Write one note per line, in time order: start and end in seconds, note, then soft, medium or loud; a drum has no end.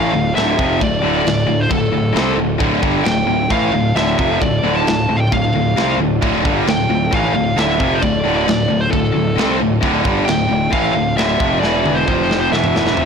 0.00 0.12 A1 loud
0.00 0.11 A2 medium
0.00 11.58 D3 medium
0.00 0.12 E3 medium
0.00 11.58 F3 medium
0.00 0.12 A3 loud
0.00 11.58 A3 medium
0.00 11.58 F4 medium
0.00 11.59 A4 medium
0.00 0.32 F5 loud
0.12 0.34 D1 medium
0.12 0.30 D2 medium
0.12 0.30 A2 medium
0.35 0.57 D1 medium
0.35 0.56 D2 medium
0.35 0.57 A2 loud
0.35 0.57 D3 loud
0.35 0.81 E5 medium
0.35 snare loud
0.35 crash medium
0.56 0.79 F1 medium
0.56 0.78 F2 loud
0.56 0.79 C3 loud
0.56 0.79 F3 medium
0.56 kick loud
0.79 1.02 D1 medium
0.79 0.97 D2 medium
0.79 0.97 A2 medium
0.79 kick medium
0.79 crash medium
0.83 1.15 D5 loud
1.02 1.24 D1 loud
1.02 1.24 D2 medium
1.02 1.24 A2 loud
1.02 1.24 D3 loud
1.17 1.61 D5 medium
1.25 1.46 D1 medium
1.25 1.43 D2 medium
1.25 1.43 A2 medium
1.25 snare loud
1.25 crash medium
1.46 1.68 D1 medium
1.46 1.65 D2 medium
1.46 1.65 A2 medium
1.60 1.71 C5 medium
1.69 1.91 D1 medium
1.69 1.87 D2 medium
1.69 1.88 A2 medium
1.69 2.34 A4 medium
1.69 kick medium
1.69 crash medium
1.92 2.14 D1 medium
1.92 2.10 D2 medium
1.92 2.10 A2 medium
2.13 2.36 C2 medium
2.13 2.35 C3 medium
2.13 2.36 G3 loud
2.13 2.36 C4 loud
2.13 crash medium
2.17 snare loud
2.36 2.58 D1 medium
2.36 2.55 D2 medium
2.36 2.55 A2 medium
2.58 2.81 D1 loud
2.58 2.81 D2 loud
2.58 2.81 A2 loud
2.58 2.81 D3 loud
2.58 kick loud
2.58 crash medium
2.82 3.03 G1 medium
2.82 3.04 G2 loud
2.82 3.04 D3 loud
2.82 3.04 G3 loud
2.82 kick loud
3.04 3.26 D1 medium
3.04 3.23 D2 medium
3.04 3.23 A2 medium
3.04 3.51 G5 medium
3.04 snare loud
3.04 crash medium
3.27 3.48 D1 medium
3.27 3.45 D2 medium
3.27 3.45 A2 medium
3.50 3.70 A1 loud
3.50 3.72 A2 medium
3.50 3.72 E3 medium
3.50 3.72 A3 loud
3.50 3.96 F5 medium
3.50 kick loud
3.50 crash medium
3.71 3.93 D1 medium
3.71 3.91 D2 medium
3.71 3.91 A2 medium
3.94 4.16 D1 medium
3.94 4.17 D2 loud
3.94 4.18 A2 loud
3.94 4.18 D3 loud
3.94 4.38 E5 medium
3.94 snare loud
3.94 crash medium
4.18 4.39 F1 loud
4.18 4.40 F2 medium
4.18 4.40 C3 medium
4.18 4.40 F3 loud
4.18 kick medium
4.41 4.62 D1 medium
4.41 4.59 D2 medium
4.41 4.59 A2 medium
4.41 4.73 D5 loud
4.41 kick medium
4.41 crash medium
4.63 4.84 D1 loud
4.63 4.85 D2 medium
4.63 4.85 A2 loud
4.63 4.86 D3 loud
4.76 5.19 A5 loud
4.85 5.06 D1 medium
4.85 5.04 D2 medium
4.85 5.04 A2 medium
4.85 snare loud
4.85 crash medium
5.08 5.29 D1 medium
5.08 5.26 D2 medium
5.08 5.27 A2 medium
5.17 5.19 F5 medium
5.17 5.31 G5 medium
5.32 5.52 D1 medium
5.32 5.49 D2 medium
5.32 5.50 A2 medium
5.32 5.95 F5 medium
5.32 kick medium
5.32 crash medium
5.53 5.74 D1 medium
5.53 5.72 D2 medium
5.53 5.72 A2 medium
5.75 5.96 C2 medium
5.75 5.98 C3 loud
5.75 5.98 G3 medium
5.75 5.99 C4 loud
5.75 snare loud
5.75 crash medium
5.98 6.19 D1 medium
5.98 6.17 D2 medium
5.98 6.17 A2 medium
6.22 6.43 D1 loud
6.22 6.43 D2 loud
6.22 6.44 A2 loud
6.22 6.44 D3 loud
6.22 kick loud
6.22 crash medium
6.44 6.66 G1 loud
6.44 6.66 G2 medium
6.44 6.66 D3 loud
6.44 6.66 G3 loud
6.44 kick loud
6.66 6.87 D1 medium
6.66 6.85 D2 medium
6.66 6.85 A2 medium
6.66 7.10 G5 loud
6.66 snare loud
6.66 crash medium
6.89 7.10 D1 medium
6.89 7.08 D2 medium
6.89 7.07 A2 medium
7.11 7.33 A1 loud
7.11 7.33 A2 medium
7.11 7.33 E3 loud
7.11 7.34 A3 medium
7.11 7.59 F5 loud
7.11 kick loud
7.11 crash medium
7.33 7.55 D1 medium
7.33 7.52 D2 medium
7.33 7.52 A2 medium
7.57 7.78 D1 loud
7.57 7.78 D2 medium
7.57 7.79 A2 loud
7.57 7.79 D3 medium
7.57 7.98 E5 loud
7.57 snare loud
7.57 crash medium
7.79 8.01 F1 medium
7.79 8.01 F2 medium
7.79 8.01 C3 loud
7.79 8.01 F3 medium
7.79 kick loud
7.95 8.02 C5 medium
8.02 8.23 D1 medium
8.02 8.20 D2 medium
8.02 8.20 A2 medium
8.02 8.35 D5 loud
8.02 kick loud
8.02 crash medium
8.24 8.46 D1 loud
8.24 8.45 D2 loud
8.24 8.45 A2 loud
8.24 8.46 D3 loud
8.37 8.78 D5 medium
8.46 8.68 D1 medium
8.46 8.64 D2 medium
8.46 8.65 A2 medium
8.46 snare loud
8.46 crash medium
8.68 8.91 D1 medium
8.68 8.87 D2 medium
8.68 8.87 A2 medium
8.81 8.91 C5 medium
8.90 9.13 D1 loud
8.90 9.09 D2 medium
8.90 9.09 A2 medium
8.90 9.55 A4 medium
8.90 kick medium
8.90 crash medium
9.12 9.36 D1 medium
9.12 9.31 D2 medium
9.12 9.32 A2 medium
9.36 9.58 C2 medium
9.36 9.57 C3 medium
9.36 9.57 G3 loud
9.36 9.59 C4 loud
9.36 snare loud
9.36 crash medium
9.57 9.81 D1 medium
9.57 9.76 D2 medium
9.57 9.76 A2 medium
9.81 10.03 D1 loud
9.81 10.03 D2 medium
9.81 10.04 A2 loud
9.81 10.03 D3 loud
9.81 kick loud
9.81 crash medium
10.03 10.26 G1 loud
10.03 10.25 G2 medium
10.03 10.26 D3 loud
10.03 10.26 G3 loud
10.03 kick loud
10.25 10.48 D1 medium
10.25 10.44 D2 medium
10.25 10.45 A2 medium
10.25 10.72 G5 loud
10.25 snare loud
10.25 crash medium
10.49 10.70 D1 medium
10.49 10.67 D2 medium
10.49 10.67 A2 medium
10.70 10.93 A1 loud
10.70 10.93 A2 medium
10.70 10.93 E3 loud
10.70 10.94 A3 loud
10.70 11.14 F5 loud
10.70 kick loud
10.70 crash medium
10.93 11.15 D1 medium
10.93 11.12 D2 medium
10.93 11.12 A2 medium
11.16 11.38 D1 medium
11.16 11.38 D2 loud
11.16 11.39 A2 loud
11.16 11.39 D3 loud
11.16 11.59 E5 loud
11.16 snare loud
11.16 crash medium
11.39 11.61 F1 medium
11.39 11.61 F2 loud
11.39 11.62 C3 medium
11.39 11.63 F3 loud
11.39 kick loud
11.60 12.04 E1 loud
11.60 12.06 E2 loud
11.60 12.06 B2 loud
11.60 12.07 B2 medium
11.60 12.06 E3 loud
11.60 11.95 D5 medium
11.60 12.07 E5 medium
11.60 snare medium
11.64 12.07 E3 medium
11.64 12.07 B3 medium
11.64 12.07 E4 medium
11.86 high tom medium
11.95 12.39 C5 medium
12.06 12.49 F1 loud
12.06 12.51 F2 loud
12.06 12.51 C3 loud
12.06 12.51 F3 loud
12.06 12.52 F3 medium
12.06 12.52 C4 medium
12.06 12.52 F4 medium
12.06 kick medium
12.31 snare medium
12.40 12.52 C5 medium
12.51 12.93 E1 loud
12.51 12.95 E2 medium
12.51 12.96 B2 medium
12.51 12.95 B2 loud
12.51 12.96 E3 medium
12.51 12.96 E3 loud
12.51 12.96 B3 medium
12.51 12.95 E4 medium
12.51 12.96 E5 medium
12.51 13.05 E5 medium
12.51 snare medium
12.64 mid tom medium
12.76 snare medium
12.87 snare medium
12.95 13.05 F1 loud
12.95 13.05 F2 medium
12.95 13.05 C3 medium
12.95 13.05 F3 loud
12.95 13.05 F3 medium
12.95 13.05 C4 medium
12.95 13.05 F4 medium
12.95 floor tom loud